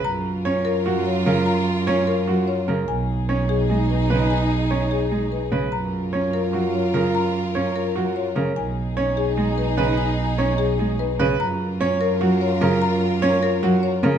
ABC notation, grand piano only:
X:1
M:7/8
L:1/8
Q:1/4=148
K:F#
V:1 name="Grand piano"
z2 c z F z A | z2 c z F z A | z2 c z G z B | z2 c z G z B |
z2 c z F z A | z2 c z F z A | z2 c z G z B | z2 c z G z B |
z2 c z F z A | z2 c z F z A |]